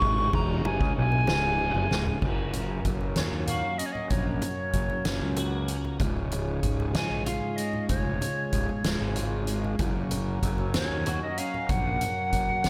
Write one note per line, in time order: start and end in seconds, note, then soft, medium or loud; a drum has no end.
0.00 0.31 G#1 medium
0.00 0.32 G#2 loud
0.00 2.18 C#3 medium
0.00 2.19 G#3 medium
0.00 2.19 C#4 medium
0.00 2.19 F4 medium
0.00 2.18 G#4 medium
0.00 0.36 C#6 loud
0.00 kick loud
0.00 ride medium
0.18 low conga medium
0.33 0.63 E1 loud
0.33 0.64 E2 loud
0.33 0.68 A#5 loud
0.33 kick loud
0.33 ride medium
0.33 high conga loud
0.33 low conga soft
0.65 0.80 F#1 loud
0.65 0.80 F#2 loud
0.65 0.96 G#5 medium
0.65 ride medium
0.65 low conga loud
0.80 0.95 C#2 loud
0.80 0.95 C#3 loud
0.80 kick loud
0.80 low conga soft
0.96 1.26 B1 loud
0.96 1.27 B2 loud
0.96 2.19 G#5 loud
0.96 ride medium
0.96 low conga soft
1.12 low conga medium
1.27 1.72 C#1 medium
1.27 snare loud
1.27 ride loud
1.27 high conga loud
1.27 low conga soft
1.59 ride medium
1.59 high conga medium
1.75 1.89 F#1 medium
1.75 1.90 F#2 loud
1.75 high conga medium
1.91 2.20 C#1 medium
1.91 2.21 C#2 loud
1.91 snare medium
1.91 low conga medium
2.06 floor tom medium
2.06 low conga medium
2.22 2.81 F#1 medium
2.22 3.79 F#2 medium
2.22 5.97 F#3 medium
2.22 5.98 A#3 medium
2.22 5.97 C#4 medium
2.22 5.97 F#4 medium
2.22 5.97 A#4 medium
2.22 kick loud
2.22 crash medium
2.22 high conga medium
2.38 low conga soft
2.53 closed hi-hat medium
2.53 low conga medium
2.85 3.18 F#1 medium
2.85 4.43 F#3 medium
2.85 kick medium
2.85 closed hi-hat medium
3.01 low conga medium
3.16 3.31 D#2 medium
3.16 3.80 C#4 medium
3.16 3.23 C#5 medium
3.16 snare loud
3.16 closed hi-hat medium
3.16 high conga medium
3.32 3.61 D#2 medium
3.45 5.06 F#4 medium
3.45 3.80 F5 medium
3.45 closed hi-hat medium
3.45 low conga medium
3.78 5.06 C#4 medium
3.78 3.87 D#5 medium
3.78 closed hi-hat medium
3.86 3.94 C#5 medium
3.92 4.12 D#5 medium
3.92 low conga medium
4.10 4.39 A#1 medium
4.10 5.69 F#2 medium
4.10 5.68 C#5 medium
4.10 kick loud
4.10 closed hi-hat medium
4.10 high conga medium
4.26 low conga soft
4.42 closed hi-hat medium
4.42 low conga medium
4.73 4.88 F#1 medium
4.73 6.00 F#3 medium
4.73 kick medium
4.73 closed hi-hat medium
4.90 low conga medium
5.05 5.20 F#1 loud
5.05 5.67 C#4 medium
5.05 snare loud
5.05 closed hi-hat medium
5.05 high conga loud
5.21 5.96 C#2 medium
5.36 6.00 F#4 medium
5.36 closed hi-hat medium
5.36 low conga loud
5.68 9.18 C#4 medium
5.68 closed hi-hat medium
5.85 low conga medium
6.00 6.59 C#1 medium
6.00 7.58 C#2 medium
6.00 9.76 G#3 medium
6.00 12.70 C#4 medium
6.00 9.76 F4 medium
6.00 9.76 G#4 medium
6.00 9.76 C#5 medium
6.00 kick medium
6.00 closed hi-hat medium
6.00 high conga loud
6.17 low conga soft
6.32 closed hi-hat medium
6.32 low conga medium
6.63 6.95 C#1 medium
6.63 8.21 G#2 medium
6.63 kick medium
6.63 closed hi-hat medium
6.80 low conga medium
6.94 7.09 A#1 medium
6.94 7.56 G#3 medium
6.94 7.24 G#5 loud
6.94 snare loud
6.94 closed hi-hat medium
6.94 high conga medium
7.10 7.39 A#1 medium
7.26 8.84 F4 medium
7.26 7.58 F5 medium
7.26 closed hi-hat medium
7.26 low conga medium
7.56 8.83 G#3 medium
7.56 7.89 D#5 medium
7.56 closed hi-hat medium
7.73 low conga medium
7.89 8.18 F1 medium
7.89 9.47 C#2 medium
7.89 9.12 C#5 medium
7.89 kick medium
7.89 closed hi-hat medium
7.89 high conga medium
8.21 closed hi-hat medium
8.21 low conga medium
8.53 8.67 C#1 medium
8.53 9.80 G#2 medium
8.53 kick medium
8.53 closed hi-hat medium
8.69 low conga medium
8.84 8.99 C#1 medium
8.84 9.47 G#3 medium
8.84 snare loud
8.84 closed hi-hat medium
8.84 high conga loud
8.84 low conga soft
9.01 9.76 G#1 medium
9.16 9.79 F4 medium
9.16 closed hi-hat medium
9.16 low conga medium
9.47 9.79 G#3 medium
9.47 closed hi-hat medium
9.64 low conga medium
9.79 10.39 F#1 medium
9.79 11.38 F#2 medium
9.79 12.70 A#3 medium
9.79 12.70 F#4 medium
9.79 12.70 A#4 medium
9.79 12.70 C#5 medium
9.79 kick loud
9.79 closed hi-hat medium
9.79 high conga medium
9.96 low conga soft
10.11 closed hi-hat medium
10.11 low conga loud
10.43 10.76 F#1 medium
10.43 12.02 F#3 medium
10.43 kick medium
10.43 closed hi-hat medium
10.58 low conga medium
10.74 10.89 D#2 loud
10.74 11.38 C#4 medium
10.74 11.19 C#5 medium
10.74 snare loud
10.74 closed hi-hat medium
10.74 high conga loud
10.90 11.19 D#2 medium
11.06 12.65 F#4 medium
11.06 closed hi-hat medium
11.06 low conga loud
11.22 11.40 D#5 medium
11.38 12.65 C#4 medium
11.38 11.72 F5 medium
11.38 closed hi-hat medium
11.54 low conga medium
11.69 11.98 A#1 loud
11.69 12.70 F#2 medium
11.69 12.70 F#5 loud
11.69 kick loud
11.69 closed hi-hat medium
11.69 high conga loud
11.86 low conga soft
12.01 closed hi-hat medium
12.01 low conga medium
12.33 12.47 F#1 medium
12.33 12.70 F#3 medium
12.33 kick medium
12.33 closed hi-hat medium
12.49 low conga medium
12.64 12.70 F#1 loud
12.64 12.70 C#4 medium
12.64 snare loud
12.64 closed hi-hat medium
12.64 high conga medium